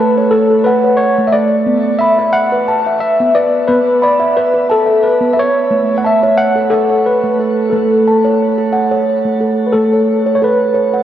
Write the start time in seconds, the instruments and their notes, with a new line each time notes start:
Already playing: tine electric piano B4
0.00 steel tongue drum A5
0.18 steel tongue drum C#5
0.31 tine electric piano A4
0.50 steel tongue drum A4
0.64 tine electric piano B4, steel tongue drum F#5
0.84 steel tongue drum C#5
0.97 tine electric piano C#5
1.18 steel tongue drum A3
1.27 tine electric piano E5
1.32 steel tongue drum A4, tine electric piano D5
1.66 steel tongue drum B3
1.99 tine electric piano E5, steel tongue drum B5
2.19 steel tongue drum E5
2.33 tine electric piano F#5
2.52 steel tongue drum B4
2.68 steel tongue drum A5
2.86 steel tongue drum E5
3.00 tine electric piano E5
3.20 steel tongue drum B3
3.35 steel tongue drum B4, tine electric piano D5
3.68 steel tongue drum B3, tine electric piano B4
4.02 tine electric piano D5, steel tongue drum B5
4.20 steel tongue drum E5
4.37 tine electric piano B4
4.54 steel tongue drum B4
4.70 tine electric piano A4, steel tongue drum A5
4.86 steel tongue drum E5
5.03 tine electric piano B4
5.21 steel tongue drum B3
5.33 steel tongue drum B4, tine electric piano E5
5.39 tine electric piano C#5
5.70 steel tongue drum A3
5.98 tine electric piano F#5
6.05 tine electric piano E5, steel tongue drum A5
6.23 steel tongue drum C#5
6.38 tine electric piano F#5
6.56 steel tongue drum A4
6.70 tine electric piano A4, steel tongue drum F#5
6.90 steel tongue drum C#5
7.06 tine electric piano B4
7.24 steel tongue drum A3
7.40 steel tongue drum A4
7.70 steel tongue drum A3, tine electric piano A4
8.08 steel tongue drum A5
8.25 steel tongue drum C#5
8.58 steel tongue drum A4
8.73 steel tongue drum F#5
8.92 steel tongue drum C#5
9.25 steel tongue drum A3
9.41 steel tongue drum A4
9.67 tine electric piano B4
9.73 steel tongue drum A3, tine electric piano A4
9.93 steel tongue drum C#5
10.26 steel tongue drum C#5
10.35 tine electric piano C#5
10.42 steel tongue drum A4, tine electric piano B4
10.74 steel tongue drum C#5
10.93 steel tongue drum F#5